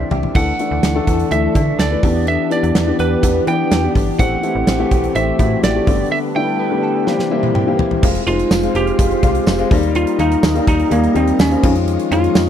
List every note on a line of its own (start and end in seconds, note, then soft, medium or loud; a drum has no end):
0.00 0.34 E3 medium
0.00 0.35 E3 medium
0.00 0.37 C4 medium
0.00 0.40 C4 medium
0.00 0.35 D4 medium
0.00 0.59 D4 medium
0.00 0.37 G4 medium
0.00 0.36 A4 medium
0.00 0.37 C6 medium
0.11 0.29 C2 medium
0.11 0.40 G4 medium
0.11 0.33 E5 medium
0.11 floor tom medium
0.23 floor tom medium
0.34 0.52 D2 loud
0.34 2.02 D3 medium
0.34 0.50 E3 medium
0.34 2.54 E3 medium
0.34 0.50 A3 medium
0.34 4.15 D4 medium
0.34 0.51 D4 medium
0.34 2.02 E4 medium
0.34 2.02 A4 medium
0.34 0.51 A4 medium
0.34 1.34 F#5 medium
0.34 kick loud
0.34 crash medium
0.59 0.82 E3 medium
0.59 0.82 A3 medium
0.59 1.55 D4 medium
0.59 0.82 D4 medium
0.59 0.83 A4 medium
0.59 closed hi-hat medium
0.71 0.80 D2 loud
0.83 1.00 D2 loud
0.83 1.30 A3 medium
0.83 snare medium
0.83 closed hi-hat medium
0.95 1.18 E3 medium
0.95 1.18 A3 medium
0.95 1.18 D4 medium
0.95 1.18 A4 medium
1.07 1.25 E2 medium
1.07 1.78 A4 medium
1.07 kick medium
1.07 closed hi-hat medium
1.19 closed hi-hat soft
1.30 1.48 D2 loud
1.30 1.46 E3 medium
1.30 1.46 A3 medium
1.30 2.03 A3 medium
1.30 1.47 D4 medium
1.30 1.47 A4 medium
1.30 1.80 E5 medium
1.30 closed hi-hat medium
1.54 1.73 D3 loud
1.54 1.78 E3 medium
1.54 1.78 A3 medium
1.54 2.51 D4 medium
1.54 1.78 D4 medium
1.54 1.78 A4 medium
1.54 kick medium
1.54 closed hi-hat medium
1.79 1.96 D2 loud
1.79 2.08 A4 medium
1.79 2.28 D5 medium
1.79 snare loud
1.79 closed hi-hat medium
1.90 2.01 E3 medium
1.90 2.03 A3 medium
1.90 2.02 D4 medium
1.90 2.03 B4 medium
2.03 2.38 E2 loud
2.03 2.41 E3 medium
2.03 4.17 E3 medium
2.03 2.41 B3 medium
2.03 2.26 B3 medium
2.03 4.17 B3 medium
2.03 2.42 D4 medium
2.03 5.83 G4 medium
2.03 2.42 G4 medium
2.03 kick loud
2.03 open hi-hat medium
2.27 2.74 B3 medium
2.27 2.50 E5 medium
2.27 closed hi-hat medium
2.50 2.74 E3 medium
2.50 2.74 B3 medium
2.50 3.46 D4 medium
2.50 2.74 D4 medium
2.50 2.74 G4 medium
2.50 2.96 D5 medium
2.50 closed hi-hat medium
2.63 2.72 E2 medium
2.63 closed hi-hat medium
2.75 2.92 E2 loud
2.75 3.22 B3 medium
2.75 snare medium
2.75 closed hi-hat medium
2.87 3.10 E3 medium
2.87 3.10 B3 medium
2.87 3.10 D4 medium
2.87 3.11 G4 medium
2.99 3.17 E2 medium
2.99 3.71 G4 medium
2.99 3.44 B4 medium
2.99 closed hi-hat medium
3.22 3.40 E2 loud
3.22 3.38 E3 medium
3.22 3.38 B3 medium
3.22 4.19 B3 medium
3.22 3.39 D4 medium
3.22 3.39 G4 medium
3.22 kick medium
3.22 closed hi-hat loud
3.46 3.70 E3 medium
3.46 3.65 E3 medium
3.46 3.70 B3 medium
3.46 3.70 D4 medium
3.46 3.94 D4 medium
3.46 3.70 G4 medium
3.46 3.92 G5 medium
3.46 closed hi-hat medium
3.71 3.89 E2 loud
3.71 4.91 G4 medium
3.71 snare loud
3.71 closed hi-hat medium
3.82 4.06 E3 medium
3.82 4.06 B3 medium
3.82 4.06 D4 medium
3.82 4.06 G4 medium
3.95 4.13 G1 loud
3.95 4.24 D4 medium
3.95 kick medium
3.95 open hi-hat medium
4.19 4.37 A1 loud
4.19 4.34 E3 medium
4.19 4.34 A3 medium
4.19 5.86 A3 medium
4.19 4.66 C4 medium
4.19 5.86 C4 medium
4.19 4.35 C4 medium
4.19 4.35 G4 medium
4.19 5.18 F#5 medium
4.19 kick loud
4.19 closed hi-hat medium
4.42 4.66 E3 medium
4.42 4.66 A3 medium
4.42 4.66 C4 medium
4.42 5.38 E4 medium
4.42 4.66 G4 medium
4.42 closed hi-hat medium
4.55 4.64 A1 medium
4.67 4.85 A1 medium
4.67 5.14 C4 medium
4.67 snare medium
4.67 closed hi-hat medium
4.79 5.02 E3 medium
4.79 5.02 A3 medium
4.79 5.02 C4 medium
4.79 5.03 G4 loud
4.91 5.09 B1 medium
4.91 5.63 G4 medium
4.91 kick medium
4.91 closed hi-hat medium
5.04 closed hi-hat soft
5.15 5.33 A1 loud
5.15 5.30 E3 medium
5.15 5.30 A3 medium
5.15 5.31 C4 medium
5.15 5.92 C4 medium
5.15 5.31 G4 medium
5.15 5.63 E5 medium
5.15 closed hi-hat medium
5.39 5.56 A2 loud
5.39 5.62 E3 medium
5.39 5.62 A3 medium
5.39 5.62 C4 medium
5.39 5.92 E4 medium
5.39 5.62 F#4 medium
5.39 kick medium
5.39 closed hi-hat medium
5.63 5.80 A1 medium
5.63 6.83 G4 medium
5.63 6.08 D5 medium
5.63 snare loud
5.63 closed hi-hat medium
5.75 5.87 E3 medium
5.75 5.86 A3 medium
5.75 5.87 C4 medium
5.75 5.86 G4 medium
5.87 6.04 G1 loud
5.87 6.25 D3 medium
5.87 7.06 G3 medium
5.87 6.10 G3 medium
5.87 6.26 A3 medium
5.87 6.26 B3 medium
5.87 7.06 D4 medium
5.87 6.26 G4 medium
5.87 7.06 A4 medium
5.87 7.06 B4 medium
5.87 kick loud
5.87 open hi-hat medium
6.11 7.06 G3 medium
6.11 6.18 E5 loud
6.35 6.58 D3 medium
6.35 6.58 A3 medium
6.35 6.58 B3 medium
6.35 7.12 D4 medium
6.35 6.59 E4 medium
6.35 7.28 G5 medium
6.59 7.12 B3 medium
6.71 6.94 D3 medium
6.71 6.94 A3 medium
6.71 6.94 B3 medium
6.71 6.94 G4 medium
6.83 7.12 A4 medium
7.06 8.02 C3 medium
7.06 7.22 E3 medium
7.06 8.08 G3 medium
7.06 8.02 G3 medium
7.06 7.22 A#3 medium
7.06 8.02 A#3 medium
7.06 7.23 C4 medium
7.06 8.02 E4 medium
7.06 7.23 G4 medium
7.06 snare medium
7.19 snare medium
7.31 7.54 E3 medium
7.31 7.54 A#3 medium
7.31 7.54 C4 medium
7.31 7.78 E4 medium
7.31 7.54 G4 loud
7.31 7.54 E5 medium
7.43 high tom medium
7.55 8.08 G4 medium
7.55 8.00 G5 medium
7.55 mid tom medium
7.67 7.90 E3 medium
7.67 7.90 A#3 medium
7.67 7.90 C4 medium
7.67 7.90 G4 medium
7.79 8.08 E4 medium
7.79 floor tom loud
7.91 floor tom medium
8.02 8.20 F1 loud
8.02 8.18 G#3 medium
8.02 9.69 G#3 medium
8.02 8.18 C4 medium
8.02 9.69 F4 medium
8.02 8.19 F4 loud
8.02 9.70 C5 medium
8.02 9.69 F5 medium
8.02 kick loud
8.02 crash loud
8.15 closed hi-hat medium
8.26 8.44 F1 loud
8.26 8.50 G#3 medium
8.26 8.50 C4 medium
8.26 8.50 D#4 medium
8.26 8.76 F4 loud
8.26 closed hi-hat medium
8.39 closed hi-hat medium
8.51 8.68 F1 loud
8.51 snare loud
8.51 tambourine medium
8.63 8.86 G#3 medium
8.63 8.86 C4 medium
8.63 8.86 F4 medium
8.63 closed hi-hat medium
8.75 8.92 F1 loud
8.75 9.96 G4 loud
8.75 closed hi-hat medium
8.87 closed hi-hat soft
8.98 9.16 F1 loud
8.98 9.14 G#3 medium
8.98 9.14 C4 medium
8.98 9.15 F4 medium
8.98 kick loud
8.98 closed hi-hat loud
9.11 closed hi-hat soft
9.23 9.40 C2 medium
9.23 9.46 G#3 medium
9.23 9.46 C4 medium
9.23 9.46 F4 medium
9.23 kick loud
9.23 closed hi-hat medium
9.35 closed hi-hat medium
9.47 9.64 F1 loud
9.47 snare loud
9.47 tambourine medium
9.58 9.71 G#3 medium
9.58 9.71 C4 medium
9.58 9.71 F4 loud
9.58 closed hi-hat medium
9.71 10.06 D#2 loud
9.71 10.09 G3 loud
9.71 10.10 A#3 medium
9.71 10.10 D#4 loud
9.71 11.61 G4 medium
9.71 11.61 A#4 medium
9.71 12.49 D#5 medium
9.71 11.61 A#5 loud
9.71 kick loud
9.71 open hi-hat medium
9.83 closed hi-hat medium
9.95 10.20 F4 loud
9.95 closed hi-hat medium
10.07 closed hi-hat medium
10.19 10.36 D#2 loud
10.19 10.42 G3 medium
10.19 10.42 A#3 medium
10.19 10.67 D#4 loud
10.19 10.42 F4 medium
10.19 closed hi-hat medium
10.32 closed hi-hat medium
10.43 10.60 D#2 loud
10.43 snare loud
10.43 tambourine medium
10.55 10.78 G3 medium
10.55 10.78 A#3 medium
10.55 10.79 D#4 medium
10.55 closed hi-hat medium
10.67 10.85 D#2 medium
10.67 10.92 D#4 medium
10.67 kick loud
10.67 closed hi-hat medium
10.80 closed hi-hat soft
10.91 11.08 D#2 loud
10.91 11.06 G3 medium
10.91 11.06 A#3 medium
10.91 11.16 A#3 medium
10.91 11.07 D#4 medium
10.91 closed hi-hat loud
11.04 closed hi-hat soft
11.14 11.33 D#2 medium
11.14 11.38 G3 medium
11.14 11.38 A#3 medium
11.14 11.38 C4 medium
11.14 11.38 D#4 medium
11.14 closed hi-hat medium
11.27 closed hi-hat medium
11.39 11.56 D#2 loud
11.39 11.73 C#4 medium
11.39 snare loud
11.39 tambourine medium
11.50 11.63 G3 medium
11.50 11.63 A#3 medium
11.50 11.63 C4 medium
11.50 closed hi-hat medium
11.62 11.98 F2 loud
11.62 12.01 D#3 medium
11.62 12.01 F3 medium
11.62 12.02 G#3 medium
11.62 12.49 G#3 medium
11.62 12.02 C#4 medium
11.62 12.02 F4 medium
11.62 12.49 F5 medium
11.62 12.49 C#6 loud
11.62 kick loud
11.62 crash medium
11.75 closed hi-hat medium
11.88 closed hi-hat medium
11.99 closed hi-hat medium
12.11 12.28 F2 loud
12.11 12.34 D#3 medium
12.11 12.34 F3 medium
12.11 12.34 G#3 medium
12.11 12.34 C#4 medium
12.11 12.35 F4 medium
12.11 12.49 F4 loud
12.11 closed hi-hat medium
12.24 closed hi-hat medium
12.35 12.49 F2 loud
12.35 snare loud
12.35 tambourine medium